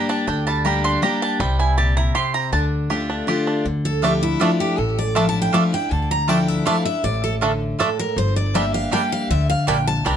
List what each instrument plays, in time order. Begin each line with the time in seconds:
Already playing: steel-string acoustic guitar G3 A#3 D4 G4, five-string banjo G3 G4
0.09 five-string banjo D4, mandolin A5
0.27 upright bass D2, steel-string acoustic guitar D3, five-string banjo D4, mandolin G5
0.47 five-string banjo G3, mandolin A5
0.65 steel-string acoustic guitar G3 A#3 D4 G4, five-string banjo G4, mandolin A#5
0.84 five-string banjo D4, mandolin C6
1.02 steel-string acoustic guitar G3 A#3 D4 G4, five-string banjo G4, mandolin A#5
1.22 five-string banjo D4, mandolin A5
1.40 upright bass C2, steel-string acoustic guitar C3, five-string banjo G3, mandolin G5
1.59 five-string banjo E4, mandolin G#5
1.78 steel-string acoustic guitar A#2, five-string banjo G4, mandolin A5
1.97 five-string banjo E4, mandolin A#5
2.15 steel-string acoustic guitar C3, five-string banjo G4, mandolin C6
2.34 five-string banjo C4, mandolin A#5
2.52 upright bass D2, steel-string acoustic guitar D3, five-string banjo D4, mandolin A5
2.90 steel-string acoustic guitar D3 A3 D4 F4, five-string banjo G4
3.10 five-string banjo D4
3.27 steel-string acoustic guitar D3 A3 D4 F4, five-string banjo G4
3.47 five-string banjo D4
3.65 upright bass D2, steel-string acoustic guitar D3
3.85 steel-string acoustic guitar A4
4.02 steel-string acoustic guitar F3 A3 D4 E4 G4, five-string banjo A3 D4, mandolin F4 A4 E5 D6
4.23 steel-string acoustic guitar E4
4.40 steel-string acoustic guitar F3 A3 D4 E4 F4, five-string banjo A3 D4, mandolin F4 A4 E5 D6
4.60 steel-string acoustic guitar G4
4.78 upright bass A1, steel-string acoustic guitar A2 A4
4.99 steel-string acoustic guitar D5
5.15 steel-string acoustic guitar F3 A3 D4 E4 F5, five-string banjo A3 D4, mandolin F4 A4 E5 D6
5.29 steel-string acoustic guitar A5
5.42 steel-string acoustic guitar G5
5.52 steel-string acoustic guitar F3 A3 D4 E4 F5, five-string banjo A3 D4, mandolin F4 A4 E5 D6
5.72 steel-string acoustic guitar D4 E4 G5
5.91 upright bass D2, steel-string acoustic guitar D3 A5
6.11 steel-string acoustic guitar A#5
6.28 steel-string acoustic guitar F3 A3 D4 E4 G5, five-string banjo A3 D4, mandolin F4 A4 E5 D6
6.48 steel-string acoustic guitar E5
6.65 steel-string acoustic guitar F3 A3 D4 E4 F5, five-string banjo A3 D4, mandolin F4 A4 E5 D6
6.85 steel-string acoustic guitar D4 E4 E5
7.04 upright bass A1, steel-string acoustic guitar A2 D5
7.24 steel-string acoustic guitar A4
7.41 steel-string acoustic guitar D3, five-string banjo A3 D4, mandolin F4 A4 E5 D6
7.79 steel-string acoustic guitar A2 A4, five-string banjo A3 D4, mandolin F4 A4 E5 D6
7.99 steel-string acoustic guitar A#4
8.16 upright bass G1, steel-string acoustic guitar G2 C5
8.36 steel-string acoustic guitar D5
8.54 steel-string acoustic guitar G3 A#3 D4 G4 E5, five-string banjo G3 D4, mandolin A#3 G4 D5 G5
8.74 steel-string acoustic guitar F5
8.91 steel-string acoustic guitar G3 A#3 D4 G4 G5, five-string banjo G3 D4, mandolin A#3 G4 D5 G5
9.12 steel-string acoustic guitar F5
9.30 upright bass D2, steel-string acoustic guitar D3 E5
9.50 steel-string acoustic guitar F5
9.67 upright bass A#1, steel-string acoustic guitar A#2 G5, five-string banjo G3 D4, mandolin A#3 G4 D5 G5
9.87 steel-string acoustic guitar A5
10.04 upright bass C2, steel-string acoustic guitar C3 A#5, five-string banjo G3 D4, mandolin A#3 G4 D5 G5